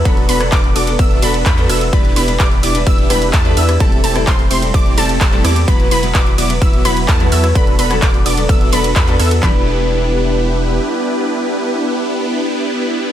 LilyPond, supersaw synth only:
\new Staff \with { instrumentName = "Supersaw synth" } { \time 4/4 \key e \minor \tempo 4 = 128 <b d' fis' a' b'>8 <b d' fis' a' b'>8 <b d' fis' a' d''>8 <b d' fis' a' d''>8 <b d' fis' a' e''>8 <b d' fis' a' b'>8 <b d' fis' a' b'>8 <b d' fis' a' e''>8 | <b d' e' g' b'>8 <b d' e' g' b'>8 <b d' e' g' d''>8 <b d' e' g' d''>8 <b d' e' g' e''>8 <b d' e' g' b'>8 <b d' e' g' a'>8 <b d' e' g' e''>8 | <a c' e' g' a'>8 <a c' e' g' a'>8 <a c' e' g' c''>8 <a c' e' g' c''>8 <a c' e' g' d''>8 <a c' e' g' a'>8 <a c' e' g' a'>8 <a c' e' g' d''>8 | <fis b e' fis' b'>8 <fis b e' fis' b'>8 <fis b e' fis' d''>8 <fis b e' fis' d''>8 <fis b e' fis' e''>8 <fis b e' fis' b'>8 <fis b e' fis' a'>8 <fis b e' fis' e''>8 |
<b d' fis' a' b'>8 <b d' fis' a' b'>8 <b d' fis' a' d''>8 <b d' fis' a' d''>8 <b d' fis' a' e''>8 <b d' fis' a' b'>8 <b d' fis' a' b'>8 <b d' fis' a' e''>8 | <b d' e' g' b'>1~ | <b d' e' g' b'>1 | }